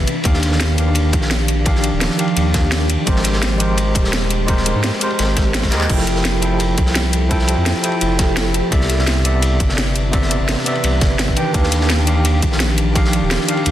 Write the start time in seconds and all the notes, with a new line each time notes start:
Already playing: D4
0.07 F3 G4, closed hi-hat, ride
0.24 D#2 D#3 D4 G4 F5, kick, closed hi-hat, ride
0.34 snare
0.42 snare, closed hi-hat, ride
0.51 snare
0.60 snare, closed hi-hat, ride
0.76 D#3 D4 G4 F5, closed hi-hat, ride
0.95 closed hi-hat, ride
1.13 A#1, kick, closed hi-hat, ride
1.22 snare
1.30 snare, closed hi-hat, ride
1.39 ride
1.48 closed hi-hat, ride
1.64 D#3 D4 G4 F5, kick, closed hi-hat, ride
1.75 snare
1.84 closed hi-hat, ride
1.93 D#1
2.01 snare, closed hi-hat, ride
2.10 snare
2.17 D#3 D4 G4 F5, closed hi-hat, ride
2.28 ride
2.37 D#2, closed hi-hat, ride
2.54 kick, snare, closed hi-hat, ride
2.72 snare, closed hi-hat, ride
2.90 closed hi-hat, ride
3.05 G#1 G#3 C4 G4 A#4 C5, kick, closed hi-hat, ride
3.16 snare
3.24 snare, closed hi-hat, ride
3.33 snare
3.42 snare, closed hi-hat, ride
3.58 G#3 G4 A#4 C5, closed hi-hat, ride
3.77 closed hi-hat, ride
3.95 D#1, kick, closed hi-hat, ride
4.04 snare
4.13 snare, closed hi-hat, ride
4.22 ride
4.30 closed hi-hat, ride
4.46 G#3 G4 A#4 C5, kick, closed hi-hat, ride
4.57 snare
4.66 closed hi-hat, ride
4.75 G#2
4.84 snare, closed hi-hat, ride
4.92 snare
4.99 G#3 G4 A#4 C5, closed hi-hat, ride
5.10 ride
5.19 G#1, snare, closed hi-hat, ride
5.36 kick, snare, closed hi-hat, ride
5.53 snare, closed hi-hat, ride
5.63 kick, snare, ride
5.71 D#2 G#3 G4 A#4 D#5, snare, clap, closed hi-hat, ride
5.81 clap
5.88 F1 F3 E4 A4 G5, kick, closed hi-hat, ride, crash
5.98 snare
6.07 snare, closed hi-hat, ride
6.16 snare
6.25 snare, closed hi-hat, ride
6.41 F3 E4 A4 G5, closed hi-hat, ride
6.60 closed hi-hat, ride
6.78 C2, kick, closed hi-hat, ride
6.86 snare
6.95 snare, closed hi-hat, ride
7.05 ride
7.13 closed hi-hat, ride
7.29 F3 E4 A4 G5, kick, closed hi-hat, ride
7.39 snare
7.48 closed hi-hat, ride
7.58 F2
7.66 snare, closed hi-hat, ride
7.74 snare
7.82 F3 E4 A4 G5, closed hi-hat, ride
7.92 ride
8.01 F1, closed hi-hat, ride
8.19 kick, snare, closed hi-hat, ride
8.36 snare, closed hi-hat, ride
8.54 closed hi-hat, ride
8.70 C2 C3 E3 B3 D4 B4 D5 E5, kick, closed hi-hat, ride
8.81 snare
8.89 snare, closed hi-hat, ride
8.99 snare
9.07 snare, closed hi-hat, ride
9.23 C3 B3 D5 E5, closed hi-hat, ride
9.42 closed hi-hat, ride
9.60 G1, kick, closed hi-hat, ride
9.69 snare
9.77 snare, closed hi-hat, ride
9.87 ride
9.95 closed hi-hat, ride
10.11 C3 B3 D5 E5, kick, closed hi-hat, ride
10.22 snare
10.31 closed hi-hat, ride
10.40 G1
10.48 snare, closed hi-hat, ride
10.58 snare
10.64 C3 B3 D5 E5, closed hi-hat, ride
10.75 ride
10.84 C2, closed hi-hat, ride
11.01 G1, kick, snare, closed hi-hat, ride
11.19 snare, closed hi-hat, ride
11.28 kick
11.36 D#3 F3 D4 G4 G5, closed hi-hat, ride
11.53 D#2 D#3 D4 G4 F5, kick, closed hi-hat, ride
11.63 snare
11.72 snare, closed hi-hat, ride
11.81 snare
11.90 snare, closed hi-hat, ride
12.06 D#3 D4 G4 F5, closed hi-hat, ride
12.25 closed hi-hat, ride
12.42 A#1, kick, closed hi-hat, ride
12.52 snare
12.60 snare, closed hi-hat, ride
12.70 ride
12.78 closed hi-hat, ride
12.94 D#3 D4 G4 F5, kick, closed hi-hat, ride
13.05 snare
13.13 closed hi-hat, ride
13.22 D#1
13.31 snare, closed hi-hat, ride
13.40 snare
13.47 D#3 D4 G4 F5, closed hi-hat, ride
13.57 ride
13.66 D#2, closed hi-hat, ride